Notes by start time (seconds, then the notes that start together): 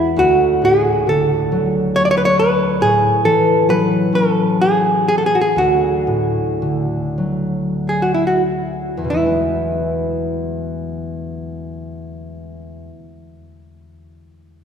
Already playing: E2 B2 E3 G#3 E4
0.16 D2 F#4
0.62 A2 G#4
1.07 D3 A4
1.52 F#3
1.96 C#5
2.05 D5
2.11 C#5
2.18 B4
2.25 C#5
2.39 B4
2.81 A2 G#4
3.24 E3 A4
3.69 F#3 B4
4.13 C#4 A4
4.61 G#4
5.08 G#4
5.18 A4
5.26 G#4
5.35 F#4
5.41 G#4
5.56 D2 F#4
6.07 A2
6.62 D3
7.18 F#3
7.89 G#4
8.02 F#4
8.14 E4
8.27 F#4
8.97 E2
9.04 B2
9.10 E3 E4
9.19 G#3
9.26 B3